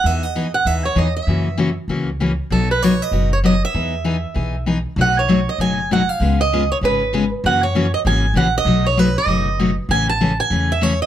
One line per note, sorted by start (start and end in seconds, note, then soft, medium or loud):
0.04 0.53 E2 medium
0.04 0.24 E3 medium
0.04 0.24 B3 medium
0.04 0.25 D#4 soft
0.04 0.25 G#4 medium
0.04 0.23 E5 medium
0.23 0.54 D#5 medium
0.35 0.46 E3 medium
0.35 0.46 B3 medium
0.35 0.46 D#4 medium
0.35 0.46 G#4 medium
0.54 0.67 F#5 medium
0.65 0.92 D#2 medium
0.65 0.85 E3 soft
0.65 0.85 B3 medium
0.65 0.86 D#4 medium
0.65 0.86 G#4 medium
0.65 0.84 E5 medium
0.85 0.98 C#5 medium
0.95 1.22 E2 medium
0.95 1.07 E3 medium
0.95 1.07 B3 medium
0.95 1.07 D#4 medium
0.95 1.07 G#4 medium
0.95 1.16 D#5 medium
1.17 1.73 E5 medium
1.27 1.77 F#2 medium
1.27 1.47 C#3 medium
1.27 1.47 E3 medium
1.27 1.47 A#3 medium
1.27 1.48 C#4 medium
1.27 1.48 F#4 medium
1.57 1.69 C#3 medium
1.57 1.69 E3 medium
1.57 1.69 A#3 medium
1.57 1.69 C#4 medium
1.57 1.69 F#4 medium
1.88 2.38 C#2 medium
1.88 2.09 C#3 medium
1.88 2.09 E3 medium
1.88 2.09 A#3 medium
1.88 2.09 C#4 medium
1.88 2.09 F#4 medium
2.20 2.31 C#3 medium
2.20 2.31 E3 medium
2.20 2.31 A#3 medium
2.20 2.31 C#4 medium
2.20 2.31 F#4 medium
2.50 3.00 B1 medium
2.50 2.70 B2 medium
2.50 2.70 F#3 medium
2.50 2.71 B3 medium
2.50 2.71 D#4 medium
2.50 2.71 F#4 medium
2.50 2.70 A4 medium
2.71 2.82 B4 medium
2.82 2.93 B2 medium
2.82 2.93 F#3 medium
2.82 2.93 B3 medium
2.82 2.93 D#4 medium
2.82 2.94 F#4 medium
2.82 3.02 C#5 medium
3.02 3.32 D#5 medium
3.11 3.61 F#1 medium
3.11 3.32 B2 medium
3.11 3.32 F#3 medium
3.11 3.32 B3 medium
3.11 3.32 D#4 medium
3.11 3.32 F#4 medium
3.33 3.38 C#5 medium
3.44 3.54 B2 medium
3.44 3.54 F#3 medium
3.44 3.54 B3 medium
3.44 3.54 D#4 medium
3.44 3.55 F#4 medium
3.44 3.63 D#5 medium
3.65 4.64 E5 medium
3.74 4.24 E2 medium
3.74 3.93 E3 medium
3.74 3.94 B3 medium
3.74 3.94 D#4 medium
3.74 3.94 G#4 medium
4.04 4.15 E3 medium
4.04 4.16 B3 medium
4.04 4.15 D#4 medium
4.04 4.16 G#4 medium
4.34 4.85 B1 medium
4.34 4.54 E3 medium
4.34 4.55 B3 medium
4.34 4.55 D#4 medium
4.34 4.55 G#4 medium
4.66 4.77 E3 medium
4.66 4.77 B3 medium
4.66 4.77 D#4 medium
4.66 4.78 G#4 medium
4.96 5.46 B1 medium
4.96 5.17 B2 medium
4.96 5.17 F#3 medium
4.96 5.17 A3 medium
4.96 5.17 D#4 medium
4.96 5.17 F#4 medium
5.01 5.18 F#5 medium
5.19 5.49 C#5 medium
5.28 5.39 B2 medium
5.28 5.39 F#3 medium
5.28 5.39 A3 medium
5.28 5.39 D#4 medium
5.28 5.39 F#4 medium
5.49 5.61 D#5 medium
5.58 6.08 F#1 medium
5.58 5.79 B2 medium
5.58 5.79 F#3 medium
5.58 5.79 A3 medium
5.58 5.79 D#4 medium
5.58 5.79 F#4 medium
5.58 5.92 G#5 medium
5.91 6.01 B2 medium
5.91 6.01 F#3 medium
5.91 6.01 A3 medium
5.91 6.01 D#4 medium
5.91 6.02 F#4 medium
5.91 6.09 F#5 medium
6.09 6.40 F5 medium
6.20 6.69 C#2 medium
6.20 6.40 C#3 medium
6.20 6.40 G#3 medium
6.20 6.41 B3 medium
6.20 6.40 F4 medium
6.20 6.41 G#4 medium
6.41 6.71 D#5 medium
6.53 6.62 C#3 medium
6.53 6.63 G#3 medium
6.53 6.63 B3 medium
6.53 6.63 F4 medium
6.53 6.63 G#4 medium
6.72 6.77 C#5 medium
6.81 7.31 G#1 medium
6.81 7.02 C#3 medium
6.81 7.02 G#3 medium
6.81 7.02 B3 medium
6.81 7.02 F4 medium
6.81 7.02 G#4 medium
6.81 7.29 B4 medium
7.13 7.23 C#3 medium
7.13 7.24 G#3 medium
7.13 7.24 B3 medium
7.13 7.24 F4 medium
7.13 7.24 G#4 medium
7.44 7.93 F#2 medium
7.44 7.64 C#3 medium
7.44 7.64 E3 medium
7.44 7.64 A#3 medium
7.44 7.64 C#4 medium
7.44 7.65 F#4 medium
7.44 7.62 F#5 medium
7.63 7.94 C#5 medium
7.75 7.85 C#3 medium
7.75 7.85 E3 medium
7.75 7.85 A#3 medium
7.75 7.86 C#4 loud
7.75 7.86 F#4 medium
7.94 7.99 D#5 medium
8.05 8.31 G#1 medium
8.05 8.25 C#3 medium
8.05 8.25 E3 medium
8.05 8.25 A#3 medium
8.05 8.25 C#4 medium
8.05 8.25 F#4 medium
8.05 8.37 G#5 medium
8.34 8.61 A#1 medium
8.34 8.46 C#3 medium
8.34 8.47 E3 medium
8.34 8.47 A#3 medium
8.34 8.47 C#4 medium
8.34 8.47 F#4 medium
8.34 8.57 F#5 medium
8.58 8.86 D#5 medium
8.65 9.15 B1 medium
8.65 8.86 B2 medium
8.65 8.86 F#3 medium
8.65 8.86 A3 medium
8.65 8.86 D#4 medium
8.65 8.86 F#4 medium
8.86 8.99 C#5 medium
8.97 9.08 B2 medium
8.97 9.08 F#3 medium
8.97 9.08 A3 medium
8.97 9.08 D#4 medium
8.97 9.08 F#4 medium
8.97 9.16 B4 medium
9.18 9.74 D#5 medium
9.26 9.76 F#1 medium
9.26 9.47 B2 medium
9.26 9.48 F#3 medium
9.26 9.48 A3 medium
9.26 9.48 D#4 medium
9.26 9.48 F#4 medium
9.59 9.70 B2 medium
9.59 9.70 F#3 medium
9.59 9.70 A3 medium
9.59 9.70 D#4 medium
9.59 9.70 F#4 medium
9.89 10.38 A1 medium
9.89 10.09 C#3 medium
9.89 10.09 E3 medium
9.89 10.09 A3 medium
9.89 10.10 C#4 medium
9.89 10.10 G#4 medium
9.89 10.09 G#5 loud
10.09 10.40 A5 medium
10.21 10.31 C#3 medium
10.21 10.31 E3 medium
10.21 10.31 A3 medium
10.21 10.32 C#4 medium
10.21 10.31 G#4 medium
10.40 10.71 G#5 medium
10.50 11.00 E2 medium
10.50 10.70 C#3 medium
10.50 10.71 E3 medium
10.50 10.71 A3 medium
10.50 10.71 C#4 medium
10.50 10.71 G#4 medium
10.72 10.83 E5 medium
10.81 10.92 C#3 medium
10.81 10.92 E3 medium
10.81 10.92 A3 medium
10.81 10.92 C#4 medium
10.81 10.92 G#4 medium
10.81 11.01 C#5 medium
11.02 11.06 D#5 medium